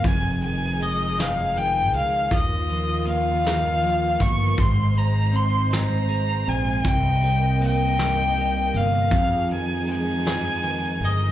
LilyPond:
<<
  \new Staff \with { instrumentName = "Violin" } { \time 6/8 \key f \minor \tempo 4. = 53 aes''8 aes''8 ees''8 f''8 g''8 f''8 | ees''4 f''4. des'''8 | c'''8 bes''8 c'''8 bes''4 aes''8 | g''4 g''4. f''8~ |
f''8 aes''8 aes''4. ees''8 | }
  \new Staff \with { instrumentName = "String section" } { \time 6/8 \key f \minor <f ees' aes'>2. | <ees bes f'>2. | <aes ees' c''>2. | <c bes ees''>2. |
<f ees' aes'>2. | }
  \new Staff \with { instrumentName = "Clean electric guitar" } { \clef bass \time 6/8 \key f \minor f,8 ees8 aes8 ees'8 ees8 aes8 | ees8 f8 bes8 ees'8 f8 bes8 | aes,8 aes8 c'8 ees'8 aes8 c'8 | c8 g8 bes8 ees'8 g8 bes8 |
f,8 ees8 aes8 ees'8 ees8 aes8 | }
  \new Staff \with { instrumentName = "Fretless electric bass" } { \clef bass \time 6/8 \key f \minor f,,2~ f,,8 des,8 | ees,2~ ees,8 g,,8 | aes,,2~ aes,,8 bes,,8 | c,2~ c,8 g,,8 |
f,2~ f,8 g,,8 | }
  \new DrumStaff \with { instrumentName = "Drums" } \drummode { \time 6/8 <hh bd>8 hh8 hh8 <hh sn>8 hh8 hh8 | <hh bd>8 hh8 hh8 <hh sn>8 hh8 <hh bd>8 | <hh bd>8 hh8 hh8 <hh sn>8 hh8 hh8 | <hh bd>8 hh8 hh8 <hh sn>8 hh8 hh8 |
<hh bd>8 hh8 hh8 <hh sn>8 hh8 hh8 | }
>>